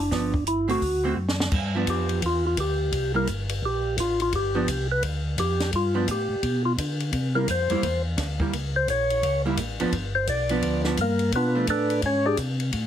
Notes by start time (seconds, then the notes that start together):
0.00 D4
0.11 G1 F3 B3 D4, kick, snare, open hi-hat
0.34 kick
0.47 E4, closed hi-hat
0.68 D3 A3 C4 F#4, open hi-hat
0.82 D2, kick, open hi-hat
1.03 D3 A3 C4 F#4
1.16 F#2
1.28 snare
1.40 snare
1.52 G2, kick, crash
1.75 F3 B3 D4
1.87 F2 G4, kick, hi-hat pedal, ride
2.09 ride
2.22 E2 F4, kick, ride
2.47 F4
2.57 D2 G4, kick, hi-hat pedal, ride
2.92 C2, kick, ride
3.14 G3 A#3 E4 A#4
3.27 G1, kick, hi-hat pedal, ride
3.49 ride
3.62 A#1 G4, kick
3.97 A1 F4, kick, hi-hat pedal, ride
4.20 F4, ride
4.32 G1 G4, kick, ride
4.55 F3 B3 D4
4.67 C2, kick, hi-hat pedal, ride
4.92 B4
5.02 D2, kick, ride
5.38 F2 G4, kick, hi-hat pedal, ride
5.60 snare, ride
5.73 G2 F4, kick, ride
5.94 F3 B3 D4 F4
6.07 A2 G4, kick, hi-hat pedal, ride
6.29 A2
6.43 B2, kick, ride
6.65 F4
6.78 D3, kick, hi-hat pedal, ride
7.00 ride
7.13 C3, kick, ride
7.35 G3 A#3 E4 A#4
7.47 F2 C5, kick, hi-hat pedal, ride
7.70 F2 G3 A#3 E4, ride
7.83 E2, kick, ride
8.18 D2, kick, snare, hi-hat pedal, ride
8.40 G3 A#3 E4, kick
8.53 C#2, kick, ride
8.76 C5
8.88 A#1 C#5, kick, hi-hat pedal, ride
9.10 ride
9.23 C#2, kick, ride
9.45 G3 A#3 E4
9.57 A1, kick, hi-hat pedal, ride
9.80 A1 F3 B3 D4, ride
9.92 G1, kick, ride
10.15 C5
10.27 B1 D5, kick, hi-hat pedal, ride
10.49 F3 B3 D4, ride
10.62 D2, kick, ride
10.84 F3 B3 D4, snare
10.97 G2 A#4, kick, hi-hat pedal, ride
11.01 A#3
11.19 ride
11.32 B2 B3 D4 F4 B4, kick, ride
11.55 F3 A3 D4
11.67 A2 D4 A4 B4 D5, kick, hi-hat pedal, ride
11.90 ride
12.02 G#2 C#4 C#5, kick, ride
12.26 D4 G4 G#4 D5
12.37 C3, kick, hi-hat pedal, ride
12.60 ride
12.72 A2, kick, ride